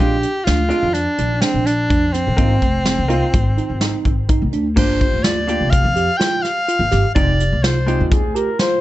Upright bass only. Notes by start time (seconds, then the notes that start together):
0.00 A#1
0.48 D2
0.83 F2
1.19 A#1
1.54 A#1
1.91 F2
2.27 A#1
2.38 G#1
2.63 F1
2.99 C2
3.34 G#1
3.70 G#1
4.06 G#1
4.42 D2
4.77 G1
5.13 D2
5.61 F1
5.84 F2
6.79 G1
6.92 G1
7.16 F1
7.52 C2
8.00 D#2
8.24 D2